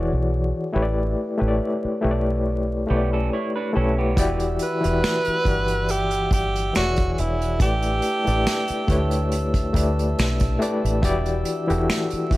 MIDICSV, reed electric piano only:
0, 0, Header, 1, 2, 480
1, 0, Start_track
1, 0, Tempo, 857143
1, 416, Time_signature, 4, 2, 24, 8
1, 6928, End_track
2, 0, Start_track
2, 0, Title_t, "Reed electric piano"
2, 0, Program_c, 0, 4
2, 0, Note_on_c, 0, 52, 85
2, 0, Note_on_c, 0, 64, 78
2, 0, Note_on_c, 0, 66, 79
2, 0, Note_on_c, 0, 68, 76
2, 0, Note_on_c, 0, 73, 77
2, 0, Note_on_c, 0, 74, 100
2, 36, Control_c, 0, 64, 127
2, 386, Note_off_c, 0, 52, 0
2, 388, Note_off_c, 0, 64, 0
2, 390, Note_off_c, 0, 66, 0
2, 392, Note_off_c, 0, 68, 0
2, 394, Note_off_c, 0, 73, 0
2, 396, Note_off_c, 0, 74, 0
2, 406, Note_on_c, 0, 57, 95
2, 411, Note_on_c, 0, 64, 91
2, 416, Note_on_c, 0, 67, 96
2, 421, Note_on_c, 0, 71, 94
2, 423, Control_c, 0, 64, 0
2, 426, Note_on_c, 0, 73, 85
2, 460, Note_off_c, 0, 73, 0
2, 462, Note_on_c, 0, 74, 105
2, 531, Control_c, 0, 64, 127
2, 758, Note_off_c, 0, 57, 0
2, 760, Note_off_c, 0, 64, 0
2, 763, Note_off_c, 0, 67, 0
2, 765, Note_off_c, 0, 71, 0
2, 772, Note_on_c, 0, 57, 78
2, 777, Note_on_c, 0, 64, 76
2, 782, Note_on_c, 0, 67, 74
2, 786, Note_off_c, 0, 74, 0
2, 786, Note_on_c, 0, 71, 75
2, 791, Note_on_c, 0, 73, 69
2, 821, Note_off_c, 0, 73, 0
2, 828, Note_on_c, 0, 74, 84
2, 1112, Note_off_c, 0, 57, 0
2, 1114, Note_off_c, 0, 64, 0
2, 1117, Note_off_c, 0, 67, 0
2, 1119, Note_off_c, 0, 71, 0
2, 1126, Note_on_c, 0, 57, 87
2, 1132, Note_on_c, 0, 64, 76
2, 1136, Note_on_c, 0, 67, 75
2, 1140, Note_off_c, 0, 74, 0
2, 1141, Note_on_c, 0, 71, 73
2, 1146, Note_on_c, 0, 73, 70
2, 1180, Note_off_c, 0, 73, 0
2, 1182, Note_on_c, 0, 74, 89
2, 1587, Note_off_c, 0, 57, 0
2, 1590, Note_off_c, 0, 64, 0
2, 1592, Note_off_c, 0, 67, 0
2, 1594, Note_off_c, 0, 71, 0
2, 1606, Note_on_c, 0, 57, 73
2, 1610, Note_on_c, 0, 64, 65
2, 1615, Note_off_c, 0, 74, 0
2, 1616, Note_on_c, 0, 67, 66
2, 1621, Note_on_c, 0, 71, 64
2, 1625, Note_on_c, 0, 73, 64
2, 1659, Note_off_c, 0, 73, 0
2, 1662, Note_on_c, 0, 74, 76
2, 2067, Note_off_c, 0, 57, 0
2, 2069, Note_off_c, 0, 64, 0
2, 2072, Note_off_c, 0, 67, 0
2, 2074, Note_off_c, 0, 71, 0
2, 2089, Note_on_c, 0, 57, 81
2, 2094, Note_on_c, 0, 64, 77
2, 2095, Note_off_c, 0, 74, 0
2, 2100, Note_on_c, 0, 67, 69
2, 2104, Note_on_c, 0, 71, 72
2, 2109, Note_on_c, 0, 73, 90
2, 2321, Note_off_c, 0, 57, 0
2, 2323, Note_off_c, 0, 64, 0
2, 2326, Note_off_c, 0, 67, 0
2, 2328, Note_off_c, 0, 71, 0
2, 2328, Note_on_c, 0, 52, 99
2, 2330, Note_off_c, 0, 73, 0
2, 2333, Note_on_c, 0, 64, 89
2, 2336, Note_on_c, 0, 66, 94
2, 2342, Note_on_c, 0, 67, 96
2, 2343, Control_c, 0, 64, 0
2, 2348, Note_on_c, 0, 74, 115
2, 2454, Control_c, 0, 64, 127
2, 2679, Note_off_c, 0, 52, 0
2, 2681, Note_off_c, 0, 64, 0
2, 2683, Note_off_c, 0, 66, 0
2, 2686, Note_off_c, 0, 67, 0
2, 2689, Note_off_c, 0, 74, 0
2, 2694, Note_on_c, 0, 52, 68
2, 2699, Note_on_c, 0, 64, 61
2, 2703, Note_on_c, 0, 66, 61
2, 2709, Note_on_c, 0, 67, 61
2, 2712, Note_on_c, 0, 76, 72
2, 3033, Note_off_c, 0, 52, 0
2, 3036, Note_off_c, 0, 64, 0
2, 3037, Note_off_c, 0, 66, 0
2, 3040, Note_off_c, 0, 67, 0
2, 3042, Note_off_c, 0, 76, 0
2, 3047, Note_on_c, 0, 52, 70
2, 3051, Note_on_c, 0, 64, 63
2, 3058, Note_on_c, 0, 78, 61
2, 3063, Note_on_c, 0, 67, 65
2, 3067, Note_on_c, 0, 74, 75
2, 3762, Note_off_c, 0, 52, 0
2, 3766, Note_off_c, 0, 64, 0
2, 3769, Note_on_c, 0, 52, 73
2, 3773, Note_off_c, 0, 67, 0
2, 3773, Note_on_c, 0, 64, 68
2, 3777, Note_off_c, 0, 78, 0
2, 3777, Note_on_c, 0, 66, 62
2, 3780, Note_on_c, 0, 67, 51
2, 3782, Note_off_c, 0, 74, 0
2, 3783, Control_c, 0, 64, 0
2, 3786, Note_on_c, 0, 73, 62
2, 3789, Note_on_c, 0, 74, 80
2, 3817, Note_off_c, 0, 67, 0
2, 3817, Note_on_c, 0, 68, 63
2, 3870, Control_c, 0, 64, 127
2, 4228, Note_off_c, 0, 52, 0
2, 4230, Note_off_c, 0, 64, 0
2, 4232, Note_off_c, 0, 66, 0
2, 4237, Note_off_c, 0, 73, 0
2, 4238, Note_off_c, 0, 74, 0
2, 4250, Note_on_c, 0, 57, 84
2, 4252, Note_off_c, 0, 68, 0
2, 4254, Note_on_c, 0, 64, 77
2, 4260, Note_on_c, 0, 67, 81
2, 4262, Control_c, 0, 64, 0
2, 4265, Note_on_c, 0, 71, 76
2, 4270, Note_on_c, 0, 74, 92
2, 4373, Control_c, 0, 64, 127
2, 4600, Note_off_c, 0, 57, 0
2, 4602, Note_off_c, 0, 64, 0
2, 4605, Note_off_c, 0, 67, 0
2, 4607, Note_off_c, 0, 71, 0
2, 4610, Note_off_c, 0, 74, 0
2, 4618, Note_on_c, 0, 57, 69
2, 4623, Note_on_c, 0, 64, 63
2, 4628, Note_on_c, 0, 67, 59
2, 4632, Note_on_c, 0, 71, 66
2, 4637, Note_on_c, 0, 74, 74
2, 4955, Note_off_c, 0, 57, 0
2, 4957, Note_off_c, 0, 64, 0
2, 4960, Note_off_c, 0, 67, 0
2, 4962, Note_off_c, 0, 71, 0
2, 4965, Note_off_c, 0, 74, 0
2, 4969, Note_on_c, 0, 57, 81
2, 4974, Note_on_c, 0, 64, 75
2, 4978, Note_on_c, 0, 67, 71
2, 4983, Note_on_c, 0, 71, 77
2, 4988, Note_on_c, 0, 73, 92
2, 5428, Note_off_c, 0, 57, 0
2, 5431, Note_off_c, 0, 64, 0
2, 5433, Note_off_c, 0, 67, 0
2, 5435, Note_off_c, 0, 71, 0
2, 5438, Note_off_c, 0, 73, 0
2, 5449, Note_on_c, 0, 57, 77
2, 5454, Note_on_c, 0, 64, 67
2, 5459, Note_on_c, 0, 67, 66
2, 5464, Note_on_c, 0, 71, 70
2, 5468, Note_on_c, 0, 74, 87
2, 5908, Note_off_c, 0, 57, 0
2, 5911, Note_off_c, 0, 64, 0
2, 5913, Note_off_c, 0, 67, 0
2, 5916, Note_off_c, 0, 71, 0
2, 5918, Note_off_c, 0, 74, 0
2, 5930, Note_on_c, 0, 57, 88
2, 5934, Note_on_c, 0, 64, 78
2, 5939, Note_on_c, 0, 67, 76
2, 5944, Note_on_c, 0, 71, 77
2, 5949, Note_on_c, 0, 74, 96
2, 6161, Note_off_c, 0, 57, 0
2, 6163, Note_off_c, 0, 64, 0
2, 6165, Note_off_c, 0, 67, 0
2, 6168, Note_off_c, 0, 71, 0
2, 6169, Note_on_c, 0, 52, 105
2, 6170, Note_off_c, 0, 74, 0
2, 6174, Note_on_c, 0, 64, 95
2, 6178, Note_on_c, 0, 66, 87
2, 6184, Control_c, 0, 64, 0
2, 6184, Note_on_c, 0, 67, 94
2, 6188, Note_on_c, 0, 74, 115
2, 6296, Control_c, 0, 64, 127
2, 6519, Note_off_c, 0, 52, 0
2, 6522, Note_off_c, 0, 64, 0
2, 6524, Note_off_c, 0, 66, 0
2, 6527, Note_off_c, 0, 67, 0
2, 6529, Note_off_c, 0, 74, 0
2, 6537, Note_on_c, 0, 52, 77
2, 6541, Note_on_c, 0, 64, 80
2, 6547, Note_on_c, 0, 66, 74
2, 6551, Note_on_c, 0, 67, 78
2, 6557, Note_on_c, 0, 69, 86
2, 6874, Note_off_c, 0, 52, 0
2, 6876, Note_off_c, 0, 64, 0
2, 6879, Note_off_c, 0, 66, 0
2, 6882, Note_off_c, 0, 67, 0
2, 6884, Note_off_c, 0, 69, 0
2, 6890, Note_on_c, 0, 52, 83
2, 6894, Note_on_c, 0, 64, 72
2, 6899, Note_on_c, 0, 66, 75
2, 6905, Note_on_c, 0, 67, 77
2, 6910, Note_on_c, 0, 76, 94
2, 6928, Note_off_c, 0, 52, 0
2, 6928, Note_off_c, 0, 64, 0
2, 6928, Note_off_c, 0, 66, 0
2, 6928, Note_off_c, 0, 67, 0
2, 6928, Note_off_c, 0, 76, 0
2, 6928, End_track
0, 0, End_of_file